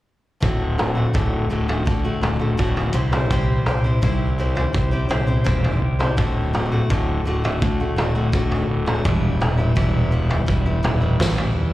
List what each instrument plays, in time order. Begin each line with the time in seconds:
0.40 fingered electric bass D1, steel-string acoustic guitar D2 A2 D3 A3 F#4, kick, floor tom
0.78 steel-string acoustic guitar A2 D3 A3 F#4, mid tom
0.95 steel-string acoustic guitar D3 A3 F#4
1.13 fingered electric bass D1, steel-string acoustic guitar D2 A2 D3 A3 F#4, kick, floor tom
1.50 fingered electric bass D1, steel-string acoustic guitar A2 D3 A3 F#4
1.68 steel-string acoustic guitar D3 A3 F#4, floor tom
1.85 fingered electric bass D2, steel-string acoustic guitar A2 D3 A3 F#4, kick
2.04 steel-string acoustic guitar D3 A3 F#4
2.21 fingered electric bass D1, steel-string acoustic guitar A2 D3 A3 F#4, floor tom, mid tom
2.39 steel-string acoustic guitar D3 A3 F#4
2.57 fingered electric bass D1, steel-string acoustic guitar D2 A2 D3 A3 F#4, kick
2.77 floor tom
2.93 fingered electric bass C2, steel-string acoustic guitar C3 G3 C4 E4 G4 C5
3.12 steel-string acoustic guitar C4 E4 G4 C5, mid tom
3.30 fingered electric bass C2, steel-string acoustic guitar C3 G3 C4 E4 G4 C5, kick, floor tom
3.66 fingered electric bass C2, steel-string acoustic guitar C4 E4 G4 C5, mid tom
3.84 steel-string acoustic guitar C4 E4 G4 C5
4.01 fingered electric bass C2, steel-string acoustic guitar C3 G3 C4 E4 G4 C5, kick, floor tom
4.38 steel-string acoustic guitar C4 E4 G4 C5
4.55 steel-string acoustic guitar C4 E4 G4 C5, floor tom
4.73 fingered electric bass C2, steel-string acoustic guitar C4 E4 G4 C5, kick
4.91 steel-string acoustic guitar C4 E4 G4 C5
5.09 fingered electric bass C2, steel-string acoustic guitar C4 E4 G4 C5, floor tom, mid tom
5.27 steel-string acoustic guitar C4 E4 G4 C5
5.44 fingered electric bass E1, steel-string acoustic guitar C3 G3 C4 E4 G4 C5, kick
5.64 floor tom
5.82 fingered electric bass C2
5.99 steel-string acoustic guitar C4 E4 G4 C5, mid tom
6.17 fingered electric bass D1, steel-string acoustic guitar D2 A2 D3 A3 F#4, kick, floor tom
6.53 steel-string acoustic guitar A2 D3 A3 F#4, mid tom
6.72 steel-string acoustic guitar D3 A3 F#4
6.90 fingered electric bass D1, steel-string acoustic guitar D2 A2 D3 A3 F#4, kick, floor tom
7.25 fingered electric bass D1, steel-string acoustic guitar A2 D3 A3 F#4
7.44 steel-string acoustic guitar D3 A3 F#4, floor tom
7.61 fingered electric bass D2, steel-string acoustic guitar A2 D3 A3 F#4, kick
7.80 steel-string acoustic guitar D3 A3 F#4
7.96 fingered electric bass D1, steel-string acoustic guitar A2 D3 A3 F#4, floor tom, mid tom
8.15 steel-string acoustic guitar D3 A3 F#4
8.32 fingered electric bass D1, steel-string acoustic guitar D2 A2 D3 A3 F#4, kick
8.52 floor tom
8.69 fingered electric bass D1
8.86 steel-string acoustic guitar D3 A3 F#4, mid tom
9.04 fingered electric bass E1, steel-string acoustic guitar E2 B2 E3 G3 B3 E4, kick, floor tom
9.41 fingered electric bass E1, steel-string acoustic guitar E3 G3 B3 E4, mid tom
9.58 steel-string acoustic guitar E3 G3 B3 E4
9.75 fingered electric bass E1, steel-string acoustic guitar E2 B2 E3 G3 B3 E4, kick, floor tom
10.11 steel-string acoustic guitar E3 G3 B3 E4
10.29 steel-string acoustic guitar E3 G3 B3 E4, floor tom
10.46 fingered electric bass E1, steel-string acoustic guitar E3 G3 B3 E4, kick
10.65 steel-string acoustic guitar E3 G3 B3 E4
10.83 fingered electric bass E1, steel-string acoustic guitar E3 G3 B3 E4, floor tom, mid tom
11.00 steel-string acoustic guitar E3 G3 B3 E4
11.20 fingered electric bass A1, steel-string acoustic guitar E2 B2 E3 G3 B3 E4, kick, snare
11.38 floor tom
11.55 fingered electric bass E2